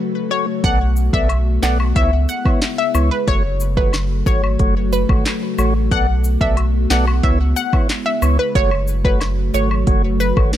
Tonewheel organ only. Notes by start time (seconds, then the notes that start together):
0.31 A3 F#4 C#5
0.64 B3 A4 D5
1.13 B3 A4 D5
1.62 B3 A4 D5
1.95 B3 E4 C#5
2.45 B3 E4 C#5
2.94 B3 E4 C#5
3.27 A3 F#4 C#5
3.77 A3 F#4 C#5
4.26 A3 F#4 C#5
4.59 A3 F#4 C#5
5.09 A3 F#4 C#5
5.58 A3 F#4 C#5
5.91 B3 A4 D5
6.41 B3 A4 D5
6.90 B3 A4 D5
7.23 B3 E4 C#5
7.73 B3 E4 C#5
8.22 B3 E4 C#5
8.55 A3 F#4 C#5
9.04 A3 F#4 C#5
9.54 A3 F#4 C#5
9.87 A3 F#4 C#5
10.36 A3 F#4 C#5